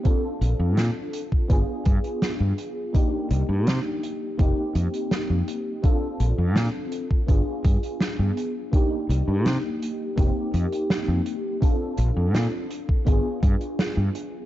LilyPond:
<<
  \new Staff \with { instrumentName = "FM electric piano" } { \time 4/4 \key bes \major \tempo 4 = 83 <c' d' f' a'>2 <b d' f' aes'>2 | <bes d' ees' g'>2 <bes c' ees' g'>2 | <c' d' f' a'>2 <b d' f' aes'>2 | <bes d' ees' g'>2 <bes c' ees' g'>2 |
<c' d' f' a'>2 <b d' f' aes'>2 | }
  \new Staff \with { instrumentName = "Fretless electric bass" } { \clef bass \time 4/4 \key bes \major r8 bes,,16 f,16 bes,16 r8. g,,16 r16 g,16 r8 g,16 r8 | r8 c,16 g,16 c16 r8. f,,16 r16 f,16 r8 f,16 r8 | r8 bes,,16 f,16 bes,16 r8. g,,16 r16 g,16 r8 g,16 r8 | r8 c,16 g,16 c16 r8. f,,16 r16 f,16 r8 f,16 r8 |
r8 bes,,16 f,16 bes,16 r8. g,,16 r16 g,16 r8 g,16 r8 | }
  \new DrumStaff \with { instrumentName = "Drums" } \drummode { \time 4/4 <hh bd>8 hh8 <hh sn>8 hh16 bd16 <hh bd>8 <hh bd>16 hh16 <hh sn>8 hh8 | <hh bd>8 hh8 <hh sn>8 hh8 <hh bd>8 hh16 hh16 <hh sn>8 hh8 | <hh bd>8 hh8 <hh sn>8 hh16 bd16 <hh bd>8 <hh bd>16 hh16 <hh sn>8 hh8 | <hh bd>8 hh8 <hh sn>8 hh8 <hh bd>8 hh16 hh16 <hh sn>8 hh8 |
<hh bd>8 hh8 <hh sn>8 hh16 bd16 <hh bd>8 <hh bd>16 hh16 <hh sn>8 hh8 | }
>>